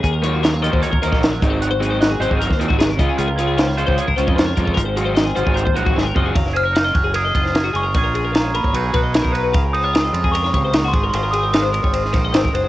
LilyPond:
<<
  \new Staff \with { instrumentName = "Glockenspiel" } { \time 4/4 \key des \major \tempo 4 = 151 r1 | r1 | r1 | r1 |
r8 f'''4. ees'''4. des'''8~ | des'''4 bes''8 ces'''2 r8 | r8 ees'''4 r8 des'''4. c'''8 | c'''8 ees'''2 r4. | }
  \new Staff \with { instrumentName = "Clean electric guitar" } { \time 4/4 \key des \major aes'16 bes'16 des''16 ges'16 bes'16 des''16 ees''16 c''16 des''16 bes'16 c''16 ees''16 c''16 des''16 bes'16 c''16 | bes'16 c''16 aes'16 c''16 ees''16 aes'16 c''16 aes'16 bes'16 c''16 bes'16 ges'16 aes'16 bes'16 ees''16 aes'16 | aes'16 bes'16 des''16 aes'16 c''16 des''16 ees''16 c''16 des''16 bes'16 c''16 ees''16 c''16 des''16 bes'16 c''16 | bes'16 c''16 aes'16 c''16 ees''16 aes'16 c''16 aes'16 bes'16 c''16 bes'16 ges'16 aes'16 bes'16 ees''16 aes'16 |
f''16 bes'16 c''16 des''16 f''16 ees''16 des''16 aes'16 bes'16 ees''16 ees''16 c''16 bes'16 ges'16 aes'16 bes'16 | des''16 bes'16 aes'16 bes'16 f''16 des''16 bes'16 des''16 ces''16 aes'16 ces''16 ees''16 des''16 bes'16 ces''16 ces''16 | f''16 bes'16 c''16 des''16 f''16 ees''16 des''16 aes'16 bes'16 des''16 des''16 c''16 bes'16 ges'16 aes'16 bes'16 | c''16 bes'16 aes'16 bes'16 f''16 c''16 bes'16 des''16 c''16 aes'16 c''16 ees''16 c''16 bes'16 c''16 c''16 | }
  \new Staff \with { instrumentName = "Clean electric guitar" } { \time 4/4 \key des \major << { r8 f'4 f'8 des''8 bes'4 r8 | ges'4 ges'8 c''8 bes'4. r8 | f'4 f'8 c''8 aes'4 f'8 r8 | r8 f'4 f'8 c''8 ges'4 f'8 |
r8 aes'16 bes'16 ees'16 f'16 r8 aes'8 f'4. | <bes des' f' aes'>8 f'4. <ges ees' ges' aes'>8 ges'8 ees'8 ges'8 | r8 ees'16 f'16 c'8 f'2 r8 | f'8 c'8 ees'16 f'4.~ f'16 c'8 r8 | } \\ { ees4 ges2 ges8 aes,8~ | aes,8 c'2 bes,8 c8 des8~ | des8 des'2 des'4 des8 | aes,4 c'2 c'4 |
ges4. ges4. ges8 aes8 | bes,4 aes,8 bes,8 ces4. ges8 | des4. aes4 c8 bes,8 aes,8~ | aes,4 aes4. ees4 aes,8 | } >> }
  \new Staff \with { instrumentName = "Overdriven electric guitar" } { \time 4/4 \key des \major r8 <ees ges bes ees'>8 r8 <ees ges bes ees'>8 r8 <ees ges bes ees'>8 r8 <ees ges c' ees'>8 | r8 <ees ges c' ees'>8 r8 <ees ges c' ees'>8 r8 <ees ges c' ees'>8 r8 <des aes des' f'>8 | r8 <des aes des' f'>8 r8 <des aes des' f'>8 r8 <des aes des' f'>8 r8 <des aes des' f'>8 | r8 <ees ges c' ges'>8 r8 <ees ges c' ges'>8 r8 <ees ges c' ges'>8 r8 <ees ges c' ges'>8 |
r1 | r1 | r1 | r1 | }
  \new Staff \with { instrumentName = "Fingered electric bass" } { \clef bass \time 4/4 \key des \major ees,4.~ ees,16 ees,16 r16 ees,16 ees,16 bes,,8. aes,,8~ | aes,,4. aes,,16 aes,,8 ees,8 aes,,8. des,16 r16 | des,4.~ des,16 des,16 r16 des,16 des,16 f,8. f,8 | aes,,4. aes,,16 aes,,8 ees,16 bes,,8 aes,,8 ges,,8 |
ges,,4. ges,,4 ges,,4 ges,,8 | bes,,4.~ bes,,16 aes,,16 ces,8 ces,8. ces,8. | des,4. f,4 des,4 aes,,8 | aes,,4.~ aes,,16 aes,,8. bes,,8 aes,,8 ges,,8 | }
  \new DrumStaff \with { instrumentName = "Drums" } \drummode { \time 4/4 <hh bd>8 hh8 <hh sn>16 sn16 hh16 bd16 hh16 bd16 hh16 <bd sn>16 <hh sn>8 <hh bd>8 | hh8 hh8 <hh sn>8 hh16 bd16 hh16 <bd sn>16 hh16 bd16 <hh sn>8 <hh bd>8 | hh8 hh8 <hh sn>16 sn16 hh16 bd16 hh16 bd16 hh16 bd16 <hh sn>8 <hh bd>16 bd16 | <hh bd>8 hh8 <hh sn>8 hh16 bd16 hh16 bd16 hh16 bd16 sn8 bd8 |
<bd cymr>16 sn16 cymr8 <cymr sn>8 <bd cymr>8 cymr8 <bd cymr>16 sn16 <cymr sn>8 cymr8 | <bd cymr>8 cymr8 <cymr sn>8 cymr16 bd16 cymr8 <bd cymr>8 <cymr sn>16 bd16 cymr8 | <bd cymr>8 cymr8 <cymr sn>8 cymr16 bd16 cymr16 sn16 <bd cymr>8 <cymr sn>8 <bd cymr>8 | cymr8 cymr8 <cymr sn>8 cymr16 bd16 cymr16 sn16 <bd cymr sn>8 <cymr sn>16 bd16 cymr8 | }
>>